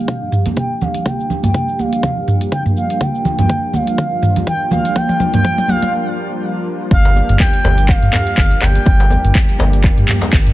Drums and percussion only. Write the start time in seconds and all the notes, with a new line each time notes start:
0.08 kick, closed hi-hat, mid tom, shaker
0.32 mid tom, shaker
0.46 closed hi-hat, high conga, low conga, shaker
0.57 kick, closed hi-hat, mid tom, shaker
0.81 low conga, shaker
0.94 closed hi-hat, shaker
1.06 kick, closed hi-hat, mid tom, high conga, shaker
1.20 shaker
1.30 low conga, shaker
1.43 closed hi-hat, mid tom, high conga, low conga, shaker
1.54 kick, closed hi-hat, mid tom, shaker
1.69 shaker
1.79 high conga, shaker
1.93 closed hi-hat, shaker
2.03 kick, closed hi-hat, mid tom, low conga, shaker
2.28 mid tom, shaker
2.41 closed hi-hat, shaker
2.52 kick, closed hi-hat, mid tom, shaker
2.65 mid tom, high conga, shaker
2.77 shaker
2.90 closed hi-hat, shaker
3.01 kick, closed hi-hat, mid tom, high conga, shaker
3.15 shaker
3.25 mid tom, low conga, shaker
3.39 closed hi-hat, mid tom, high conga, low conga, shaker
3.50 kick, closed hi-hat, mid tom, shaker
3.73 mid tom, high conga, shaker
3.87 closed hi-hat, shaker
3.98 kick, closed hi-hat, mid tom, shaker
4.23 mid tom, shaker
4.36 closed hi-hat, low conga, shaker
4.47 kick, closed hi-hat, mid tom, shaker
4.71 mid tom, high conga, low conga, shaker
4.85 closed hi-hat, shaker
4.96 kick, closed hi-hat, mid tom, high conga, shaker
5.09 mid tom, shaker
5.20 mid tom, low conga, shaker
5.33 closed hi-hat, mid tom, high conga, low conga, shaker
5.45 kick, closed hi-hat, mid tom, shaker
5.58 mid tom, shaker
5.68 mid tom, high conga, shaker
5.83 closed hi-hat, mid tom, shaker
6.91 kick, closed hi-hat, djembe tone, shaker
7.05 djembe slap
7.16 djembe tone, shaker
7.29 closed hi-hat, mid tom, shaker
7.40 kick, clap, closed hi-hat, djembe tone, shaker
7.54 closed hi-hat
7.64 djembe slap, djembe tone, shaker
7.78 closed hi-hat, shaker
7.89 kick, clap, closed hi-hat, djembe tone, shaker
8.03 closed hi-hat
8.12 clap, mid tom, djembe slap, djembe tone, shaker
8.27 closed hi-hat, shaker
8.38 kick, clap, closed hi-hat, djembe tone, shaker
8.51 closed hi-hat
8.61 clap, djembe slap, djembe tone, shaker
8.76 closed hi-hat, shaker
8.86 kick, closed hi-hat, djembe tone, shaker
9.00 closed hi-hat, djembe slap
9.10 djembe tone, shaker
9.25 closed hi-hat, mid tom, shaker
9.35 kick, clap, closed hi-hat, djembe tone, shaker
9.49 closed hi-hat
9.59 djembe slap, djembe tone, shaker
9.73 closed hi-hat, shaker
9.84 kick, clap, closed hi-hat, djembe tone, shaker
9.98 closed hi-hat
10.08 clap, mid tom, djembe tone, shaker
10.21 closed hi-hat, djembe slap, shaker
10.32 kick, clap, closed hi-hat, djembe tone, shaker
10.47 closed hi-hat, mid tom